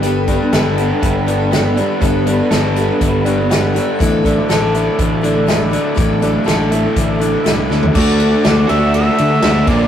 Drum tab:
CC |----------------|----------------|----------------|----------------|
RD |----------------|----------------|----------------|----------------|
HH |x-x-x-x-x-x-x-x-|x-x-x-x-x-x-x-x-|x-x-x-x-x-x-x-x-|x-x-x-x-x-x-x---|
SD |----o-------o---|----o-------o---|----o-------o---|----o-------o-o-|
FT |----------------|----------------|----------------|---------------o|
BD |--o-----o-------|o-------o-------|o-o-----o-------|o-------o-------|

CC |x---------------|
RD |--x-x-x-x-x-x-x-|
HH |----------------|
SD |----o-------o---|
FT |----------------|
BD |o-------------o-|